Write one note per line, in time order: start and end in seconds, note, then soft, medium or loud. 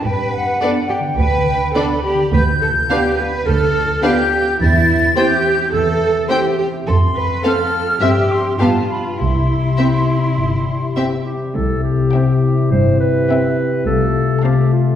0.00 0.41 D4 soft
0.00 0.61 B4 medium
0.00 0.32 G5 medium
0.04 0.49 G2 medium
0.04 2.35 G2 soft
0.23 0.79 B3 soft
0.32 0.88 F#5 medium
0.42 1.54 D4 soft
0.61 0.78 B3 soft
0.61 0.69 D4 soft
0.61 0.77 D4 soft
0.61 0.69 A4 medium
0.61 0.69 B4 soft
0.61 1.74 D5 soft
0.61 0.70 D5 soft
0.80 1.17 B3 soft
0.88 0.97 G4 medium
0.88 1.74 G5 medium
0.99 1.36 D3 soft
1.17 1.63 D2 medium
1.17 1.93 B3 soft
1.17 1.73 B4 medium
1.37 2.13 D3 soft
1.56 3.26 D4 soft
1.74 1.92 B3 soft
1.74 1.83 D4 medium
1.74 1.92 D4 soft
1.74 2.03 A4 medium
1.74 1.82 B4 medium
1.74 1.83 D5 soft
1.74 2.31 B5 medium
1.94 2.51 B3 soft
2.04 2.32 G4 medium
2.14 2.32 D3 soft
2.32 2.78 D2 medium
2.32 4.62 D3 medium
2.32 2.41 B4 medium
2.32 3.18 G6 medium
2.52 3.07 B3 soft
2.62 2.70 A4 medium
2.70 3.83 F4 soft
2.89 3.06 B3 medium
2.89 2.98 D4 soft
2.89 3.06 F4 medium
2.89 3.18 G4 medium
2.89 2.98 B4 soft
2.89 4.02 D5 soft
2.89 2.98 F5 soft
3.09 3.45 B3 soft
3.18 3.46 B4 medium
3.27 3.64 D4 soft
3.45 3.91 D2 medium
3.45 4.21 B3 medium
3.45 4.03 A4 medium
3.45 4.02 F6 medium
3.66 4.40 D4 soft
3.84 4.62 F4 soft
4.02 4.19 B3 medium
4.02 4.11 D4 medium
4.02 4.19 F4 soft
4.02 4.60 G4 medium
4.02 4.10 B4 medium
4.02 4.62 D5 soft
4.02 4.11 F5 soft
4.02 4.58 G6 medium
4.41 4.62 D4 soft
4.59 5.04 E2 medium
4.59 5.72 E3 medium
4.59 5.15 E4 medium
4.59 5.15 A6 medium
4.79 5.15 E4 soft
4.98 6.10 C5 soft
5.16 5.24 C4 soft
5.16 5.33 C4 medium
5.16 5.53 E4 soft
5.16 5.33 E4 medium
5.16 5.72 G4 medium
5.16 5.24 C5 soft
5.16 5.25 G5 medium
5.16 5.73 G6 medium
5.36 5.91 C4 soft
5.54 6.29 E4 soft
5.73 6.18 E2 medium
5.73 6.89 E3 medium
5.73 6.28 A4 medium
5.73 6.29 E6 medium
5.92 6.48 C4 soft
6.29 6.46 C4 medium
6.29 6.38 C4 medium
6.29 6.46 E4 soft
6.29 6.67 E4 soft
6.29 6.57 G4 medium
6.29 6.37 C5 medium
6.29 6.38 G5 soft
6.29 6.36 G6 medium
6.50 7.05 C4 soft
6.58 6.66 G4 medium
6.69 6.89 E4 soft
6.87 7.32 F2 medium
6.87 8.04 F3 medium
6.87 6.95 A4 medium
6.87 7.40 C6 medium
7.07 7.63 C4 soft
7.15 7.43 B4 medium
7.25 8.04 A4 soft
7.44 7.60 C4 soft
7.44 7.53 C4 soft
7.44 7.52 A4 soft
7.44 8.01 A4 medium
7.44 7.61 A4 soft
7.44 7.52 F5 soft
7.44 8.00 F6 medium
7.64 8.20 C4 soft
7.83 8.04 F4 soft
8.01 8.58 G2 medium
8.01 8.48 G2 medium
8.01 8.10 C4 soft
8.01 8.18 C4 soft
8.01 8.10 G4 soft
8.01 8.59 G4 medium
8.01 8.18 G4 medium
8.01 8.09 E5 soft
8.01 8.31 E6 medium
8.21 8.62 C4 soft
8.30 8.60 C6 medium
8.40 8.98 G4 soft
8.40 8.62 C5 soft
8.59 9.06 G2 medium
8.59 9.21 G2 soft
8.59 8.68 B3 soft
8.59 8.76 B3 soft
8.59 9.18 F4 medium
8.59 8.76 F4 soft
8.59 8.67 G4 soft
8.59 8.67 F5 soft
8.59 8.89 A5 medium
8.90 9.18 B5 medium
8.99 9.57 G4 soft
8.99 9.21 B4 soft
9.18 9.66 C2 medium
9.18 11.54 C3 soft
9.18 11.26 E4 soft
9.18 10.93 C6 medium
9.39 9.97 E4 soft
9.59 10.75 G4 soft
9.78 9.86 C4 soft
9.78 9.95 C4 soft
9.78 9.94 E4 soft
9.78 9.86 G4 soft
9.78 10.95 C5 soft
9.78 9.86 E5 soft
9.98 10.36 E4 soft
10.18 10.56 G3 soft
10.37 10.84 G1 soft
10.37 11.15 E4 soft
10.57 11.34 G3 soft
10.77 11.94 G4 soft
10.96 11.12 C4 soft
10.96 11.04 C4 soft
10.96 11.12 E4 soft
10.96 11.04 G4 soft
10.96 12.13 C5 soft
10.96 11.05 E5 soft
11.16 11.74 E4 soft
11.25 11.57 G4 medium
11.36 12.51 G3 soft
11.55 12.01 C2 medium
11.55 13.86 C3 soft
11.55 13.83 C4 soft
11.55 13.83 E4 soft
11.55 11.83 A4 medium
11.75 12.70 E4 soft
11.84 12.73 G4 medium
11.95 12.32 G4 soft
12.14 12.56 C4 soft
12.14 13.28 C5 soft
12.14 12.56 E5 soft
12.14 12.57 G5 soft
12.33 13.09 G4 soft
12.52 12.89 G3 soft
12.71 13.17 G1 medium
12.71 13.17 G2 medium
12.71 13.89 E4 soft
12.71 13.00 C5 medium
12.90 13.66 G3 soft
13.00 13.85 B4 medium
13.10 13.47 G4 soft
13.29 13.72 C4 soft
13.29 13.72 E5 soft
13.29 13.72 G5 soft
13.49 13.89 G4 soft
13.67 13.89 G3 soft
13.86 14.31 C2 medium
13.86 14.32 C2 medium
13.86 14.96 C3 soft
13.86 14.96 A3 soft
13.86 14.96 F4 soft
13.86 14.42 A4 medium
14.06 14.96 F4 soft
14.25 14.62 A4 soft
14.43 14.86 C4 soft
14.43 14.72 G4 medium
14.43 14.96 C5 soft
14.43 14.86 F5 soft
14.43 14.86 A5 soft
14.63 14.96 A4 soft
14.73 14.96 F4 soft
14.82 14.96 C4 soft